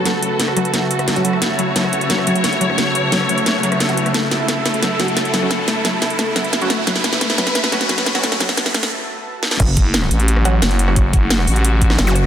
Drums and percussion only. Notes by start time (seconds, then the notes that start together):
0.06 snare, closed hi-hat
0.23 closed hi-hat
0.40 snare, closed hi-hat
0.48 cross-stick
0.57 closed hi-hat
0.65 closed hi-hat
0.74 snare, closed hi-hat
0.91 closed hi-hat
0.99 cross-stick, closed hi-hat
1.08 snare, closed hi-hat
1.16 closed hi-hat
1.25 closed hi-hat
1.33 cross-stick
1.42 snare, closed hi-hat
1.59 closed hi-hat
1.76 snare, closed hi-hat
1.84 cross-stick
1.93 closed hi-hat
2.01 closed hi-hat
2.10 snare, closed hi-hat
2.18 cross-stick
2.27 closed hi-hat
2.35 closed hi-hat
2.44 snare, closed hi-hat
2.53 closed hi-hat
2.61 closed hi-hat
2.70 cross-stick
2.78 snare, closed hi-hat
2.95 closed hi-hat
3.12 snare, closed hi-hat
3.21 cross-stick
3.29 closed hi-hat
3.38 closed hi-hat
3.46 snare, closed hi-hat
3.63 closed hi-hat
3.72 cross-stick, closed hi-hat
3.80 snare, closed hi-hat
3.89 closed hi-hat
3.97 closed hi-hat
4.06 cross-stick, closed hi-hat
4.14 snare, closed hi-hat
4.31 snare, closed hi-hat
4.48 snare, closed hi-hat
4.66 snare, closed hi-hat
4.74 closed hi-hat
4.83 snare, closed hi-hat
5.00 snare, closed hi-hat
5.08 closed hi-hat
5.17 snare, closed hi-hat
5.25 closed hi-hat
5.34 snare, closed hi-hat
5.51 snare, closed hi-hat
5.68 snare, closed hi-hat
5.85 snare, closed hi-hat
6.02 snare, closed hi-hat
6.10 closed hi-hat
6.19 snare, closed hi-hat
6.36 snare, closed hi-hat
6.44 closed hi-hat
6.53 snare, closed hi-hat
6.61 closed hi-hat
6.70 snare, closed hi-hat
6.87 snare, closed hi-hat
6.96 snare
7.04 snare, closed hi-hat
7.13 snare
7.21 snare, closed hi-hat
7.30 snare
7.38 snare, closed hi-hat
7.47 snare, closed hi-hat
7.55 snare, closed hi-hat
7.64 snare
7.72 snare, closed hi-hat
7.81 snare, closed hi-hat
7.89 snare, closed hi-hat
7.98 snare, closed hi-hat
8.06 snare, closed hi-hat
8.15 snare
8.23 snare, closed hi-hat
8.32 snare
8.40 snare, closed hi-hat
8.49 snare
8.57 snare, closed hi-hat
8.66 snare
8.74 snare, closed hi-hat
8.83 snare, closed hi-hat
9.43 snare
9.51 snare
9.60 kick, closed hi-hat, crash
9.77 kick, closed hi-hat
9.94 snare, closed hi-hat
10.03 cross-stick
10.11 closed hi-hat
10.20 closed hi-hat
10.28 closed hi-hat
10.37 cross-stick
10.45 closed hi-hat
10.62 snare, closed hi-hat
10.71 closed hi-hat
10.79 closed hi-hat
10.88 cross-stick
10.96 kick, closed hi-hat
11.13 kick, closed hi-hat
11.30 snare, closed hi-hat
11.39 cross-stick
11.47 open hi-hat
11.56 closed hi-hat
11.65 closed hi-hat
11.82 kick, closed hi-hat
11.90 cross-stick, snare
11.99 snare, closed hi-hat
12.07 closed hi-hat
12.16 closed hi-hat